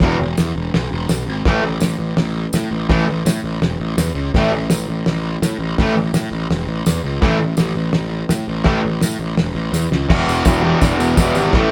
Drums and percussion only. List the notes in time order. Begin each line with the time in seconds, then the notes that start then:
0.00 kick, snare, open hi-hat
0.37 snare, open hi-hat, tambourine
0.74 snare, open hi-hat
1.09 snare, open hi-hat, tambourine
1.45 kick, snare, open hi-hat
1.80 snare, open hi-hat, tambourine
2.17 snare, open hi-hat
2.53 snare, open hi-hat, tambourine
2.90 kick, snare, open hi-hat
3.26 snare, open hi-hat, tambourine
3.62 snare, open hi-hat
3.98 snare, open hi-hat, tambourine
4.35 kick, snare, open hi-hat
4.70 snare, open hi-hat, tambourine
5.06 snare, open hi-hat
5.42 snare, open hi-hat, tambourine
5.78 kick, snare, open hi-hat
6.14 snare, open hi-hat, tambourine
6.51 snare, open hi-hat
6.86 snare, open hi-hat, tambourine
7.22 kick, snare, open hi-hat
7.57 snare, open hi-hat, tambourine
7.93 snare, open hi-hat
8.29 snare, open hi-hat, tambourine
8.64 kick, snare, open hi-hat
9.01 snare, open hi-hat, tambourine
9.37 snare, open hi-hat
9.73 snare, tambourine
9.92 snare
10.10 kick, snare, crash
10.29 tambourine
10.45 kick, snare, tambourine, crash
10.81 kick, snare, tambourine, crash
11.00 tambourine
11.17 kick, snare, tambourine, crash
11.35 tambourine
11.53 kick, snare, crash